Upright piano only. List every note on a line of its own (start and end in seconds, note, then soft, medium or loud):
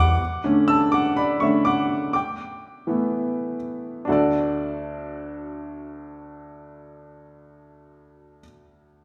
0.00 0.22 E3 soft
0.00 0.21 G3 soft
0.00 0.21 B3 medium
0.00 0.21 D5 medium
0.00 0.21 E5 medium
0.00 0.65 F#5 medium
0.00 0.21 B5 medium
0.00 0.70 D6 loud
0.44 1.13 D3 soft
0.44 1.14 A3 soft
0.44 1.14 C#4 medium
0.68 0.92 A5 medium
0.68 0.91 E6 medium
0.92 0.99 F#5 medium
0.92 0.97 D6 medium
1.17 1.40 D5 medium
1.17 1.42 B5 medium
1.40 1.63 D3 soft
1.40 1.63 A3 soft
1.40 1.64 C#4 soft
1.40 1.64 E5 medium
1.40 1.66 C#6 medium
1.65 2.11 F#5 medium
1.65 2.10 D6 medium
2.13 3.56 G5 soft
2.13 3.55 D6 medium
2.87 3.56 E3 soft
2.87 3.56 A3 soft
2.87 3.57 B3 soft
4.05 8.41 D2 medium
4.05 8.37 D4 medium
4.05 8.40 F#4 medium
4.10 8.42 A4 medium
4.10 8.44 D5 medium